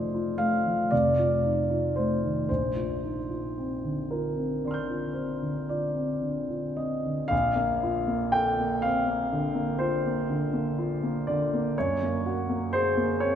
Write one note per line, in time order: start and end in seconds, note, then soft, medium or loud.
0.00 0.88 F1 soft
0.00 0.66 F3 soft
0.00 0.38 A3 soft
0.00 0.94 D#4 soft
0.00 0.14 F4 soft
0.00 0.40 C5 medium
0.00 0.91 D5 medium
0.14 0.55 F4 soft
0.38 0.80 A3 soft
0.38 0.90 F5 medium
0.66 0.92 F3 soft
0.91 2.45 F1 soft
0.91 1.96 D5 medium
1.19 1.60 F4 soft
1.44 1.70 D#4 soft
1.70 2.12 F4 soft
1.96 2.39 A3 soft
1.96 2.47 C5 medium
2.25 2.50 D#3 soft
2.49 7.28 A#1 soft
2.49 4.10 C5 medium
2.75 3.18 F4 soft
3.03 3.30 D#4 soft
3.30 3.73 F4 soft
3.58 4.00 C4 soft
3.84 4.27 D3 soft
4.11 4.53 F4 soft
4.11 5.68 A#4 soft
4.36 4.79 C4 soft
4.65 5.06 D3 soft
4.65 5.68 D5 soft
4.65 7.30 C6 soft
4.71 7.32 F6 soft
4.71 7.33 G6 soft
4.89 5.31 F4 soft
5.13 5.57 C4 soft
5.13 5.67 C5 soft
5.42 5.84 D3 soft
5.69 6.12 F4 soft
5.69 6.78 D5 soft
5.96 6.39 C4 soft
6.22 6.66 D3 soft
6.49 6.94 F4 soft
6.77 7.21 C4 soft
6.77 7.31 D#5 soft
7.05 7.32 D3 soft
7.28 11.71 A#1 soft
7.28 8.32 F5 medium
7.55 7.98 A#3 soft
7.83 8.24 F4 soft
8.07 8.49 A#3 soft
8.32 8.74 A4 soft
8.32 8.83 G5 medium
8.59 8.99 A#3 soft
8.82 9.09 C4 soft
8.82 9.81 F5 medium
9.07 9.47 A#3 soft
9.32 9.72 D3 soft
9.55 9.95 A#3 soft
9.79 10.20 F4 soft
9.79 11.25 C5 medium
10.06 10.45 A#3 soft
10.30 10.69 D3 soft
10.53 10.92 A#3 soft
10.79 11.17 F4 soft
11.03 11.42 A#3 soft
11.27 11.67 D3 soft
11.27 11.75 D5 soft
11.54 11.77 A#3 soft
11.78 13.35 F#2 soft
11.78 12.73 C#5 medium
12.03 12.40 A#3 soft
12.26 12.64 F#4 soft
12.49 12.87 A#3 soft
12.73 13.12 G#4 soft
12.73 13.21 C5 medium
12.97 13.35 A#3 soft
13.20 13.35 C4 soft
13.20 13.35 C#5 medium